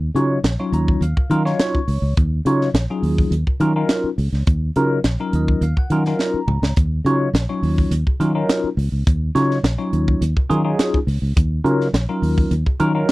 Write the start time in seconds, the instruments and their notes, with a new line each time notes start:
0.15 fingered electric bass C#3, tine electric piano F#3 C#4 D#4 F4 C#5, closed hi-hat
0.44 fingered electric bass A#1, tine electric piano F4 G#4, snare, closed hi-hat
0.60 tine electric piano F#3 C#4 D#4 F4 C#5
0.72 fingered electric bass D#2, tine electric piano A#5, closed hi-hat
0.88 kick
1.01 fingered electric bass D#2, tine electric piano F5, closed hi-hat
1.17 tine electric piano F4 A#4, kick
1.30 fingered electric bass D#3, tine electric piano F#3 C#4 D#4 F4 A#4, closed hi-hat
1.45 tine electric piano F#3 C#4 D#4 F4 C#5, snare
1.59 tine electric piano C#5, snare, closed hi-hat
1.75 muted fingered electric bass stroke, kick
1.88 fingered electric bass C#2, tine electric piano F4 A#4, open hi-hat
2.02 fingered electric bass C#2
2.17 fingered electric bass D#2, kick, closed hi-hat
2.45 fingered electric bass C#3, tine electric piano F#3 C#4 D#4 F4 C#5, closed hi-hat
2.61 snare
2.74 fingered electric bass A#1, snare, closed hi-hat
2.90 tine electric piano F#3 C#4 D#4 F4 G#4
3.03 fingered electric bass D#2, open hi-hat
3.18 kick
3.31 fingered electric bass D#2, closed hi-hat
3.47 tine electric piano F4 A#4, kick
3.60 fingered electric bass D#3, tine electric piano F#3 C#4 D#4 F4 A#4, closed hi-hat
3.76 tine electric piano F#3 C#4 D#4 F4 A#4
3.89 snare, closed hi-hat
4.04 muted fingered electric bass stroke
4.18 fingered electric bass C#2, tine electric piano F4 G#4, open hi-hat
4.32 fingered electric bass C#2, snare
4.47 fingered electric bass D#2, kick, closed hi-hat
4.76 fingered electric bass C#3, tine electric piano F#3 C#4 D#4 F4 A#4, closed hi-hat
5.04 fingered electric bass A#1, snare, closed hi-hat
5.20 tine electric piano F#3 C#4 D#4 F4 A#4
5.33 fingered electric bass D#2, tine electric piano D#5, closed hi-hat
5.48 kick
5.61 fingered electric bass D#2, tine electric piano F5, closed hi-hat
5.77 tine electric piano F4 A#4 F#5, kick
5.90 fingered electric bass D#3, tine electric piano F#3 C#4 D#4 F4 A#4, closed hi-hat
6.05 tine electric piano F#3 C#4 D#4 F4 A#4, snare
6.19 tine electric piano A#5, snare
6.34 muted fingered electric bass stroke
6.47 fingered electric bass C#2, tine electric piano F4 C#5, mid tom
6.62 fingered electric bass C#2, snare
6.76 fingered electric bass D#2, kick, closed hi-hat
7.05 fingered electric bass C#3, tine electric piano F#3 C#4 D#4 F4 C#5, closed hi-hat
7.34 fingered electric bass A#1, tine electric piano F4 A#4, snare, closed hi-hat
7.49 tine electric piano F#3 C#4 D#4 F4 C#5
7.62 fingered electric bass D#2, open hi-hat
7.78 kick
7.91 fingered electric bass D#2, closed hi-hat
8.07 tine electric piano F4 G#4, kick
8.20 fingered electric bass D#3, tine electric piano F#3 C#4 D#4 F4 A#4, closed hi-hat
8.35 tine electric piano F#3 C#4 D#4 F4 A#4
8.49 snare, closed hi-hat
8.64 muted fingered electric bass stroke
8.77 fingered electric bass C#2, tine electric piano F4 A#4, open hi-hat
8.92 fingered electric bass C#2
9.07 fingered electric bass D#2, kick, closed hi-hat
9.35 fingered electric bass C#3, tine electric piano F#3 C#4 D#4 F4 C#5, snare, closed hi-hat
9.51 snare
9.63 fingered electric bass A#1, snare, closed hi-hat
9.78 tine electric piano F#3 C#4 D#4 F4 C#5
9.93 fingered electric bass D#2, closed hi-hat
10.08 kick
10.21 fingered electric bass D#2, closed hi-hat
10.36 tine electric piano F4 A#4, kick
10.50 fingered electric bass D#3, tine electric piano F#3 C#4 D#4 F4 G#4, closed hi-hat
10.64 tine electric piano F#3 C#4 D#4 F4 G#4
10.79 snare, closed hi-hat
10.94 muted fingered electric bass stroke, kick
11.07 fingered electric bass C#2, tine electric piano F4 C#5, open hi-hat
11.22 fingered electric bass C#2
11.36 fingered electric bass D#2, kick, closed hi-hat
11.64 fingered electric bass C#3, tine electric piano F#3 C#4 D#4 F4 A#4, closed hi-hat
11.81 snare
11.93 fingered electric bass A#1, tine electric piano F4 C#5, snare, closed hi-hat
12.09 tine electric piano F#3 C#4 D#4 F4 A#4
12.22 fingered electric bass D#2, open hi-hat
12.38 kick
12.51 fingered electric bass D#2, closed hi-hat
12.66 tine electric piano F4 G#4, kick
12.80 fingered electric bass D#3, tine electric piano F#3 C#4 D#4 F4 A#4, closed hi-hat
12.95 tine electric piano F#3 C#4 D#4 F4 A#4